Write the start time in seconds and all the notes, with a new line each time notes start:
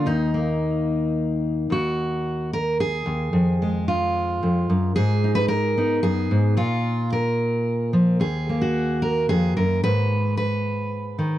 Already playing: A#3
0.06 D#2 D#4
0.34 A#3
1.70 D#2 F#4
2.53 A#4
2.80 G#4
3.06 D#2
3.33 F2
3.62 G#3
3.88 F4
4.43 F2
4.70 F#2
4.96 G#2 G#4
5.24 D#4
5.35 B4
5.48 A#4
5.77 B3 D#4
6.03 F#2 G#4
6.31 G#2
6.57 A#2 F4
7.13 A#4
7.93 F3
8.20 D#2 G#4
8.49 A#3
8.62 F#4
9.02 A#4
9.29 F2 G#4
9.57 F#2 A#4
9.84 G#2 B4
10.37 B4
11.18 D#3